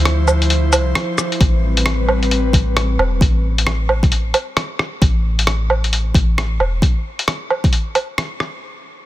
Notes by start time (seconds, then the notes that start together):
Already playing: D2 F3 E4 C5
0.05 cross-stick, closed hi-hat
0.28 cabasa, low woodblock
0.42 closed hi-hat
0.50 closed hi-hat
0.73 C2, closed hi-hat, cabasa, low woodblock
0.95 cross-stick, closed hi-hat
1.18 cross-stick, cabasa
1.32 closed hi-hat
1.40 A1 G3 C4 B4, kick, closed hi-hat
1.77 closed hi-hat
1.86 cross-stick, closed hi-hat
2.09 low woodblock
2.23 closed hi-hat
2.31 closed hi-hat
2.53 A1, kick, closed hi-hat
2.77 cross-stick, closed hi-hat
2.99 E1, low woodblock
3.21 A1, kick, closed hi-hat
3.58 closed hi-hat
3.67 cross-stick, closed hi-hat
3.89 low woodblock
4.03 kick, closed hi-hat
4.12 closed hi-hat
4.34 closed hi-hat, low woodblock
4.57 cross-stick, closed hi-hat
4.79 cross-stick
5.02 A1, kick, closed hi-hat
5.39 closed hi-hat
5.47 cross-stick, closed hi-hat
5.70 low woodblock
5.84 closed hi-hat
5.93 closed hi-hat
6.15 A1, kick, closed hi-hat
6.38 cross-stick, closed hi-hat
6.60 E1, low woodblock
6.82 kick, closed hi-hat
7.19 closed hi-hat
7.28 cross-stick, closed hi-hat
7.50 low woodblock
7.64 kick, closed hi-hat
7.73 closed hi-hat
7.95 closed hi-hat, low woodblock
8.18 cross-stick, closed hi-hat
8.40 cross-stick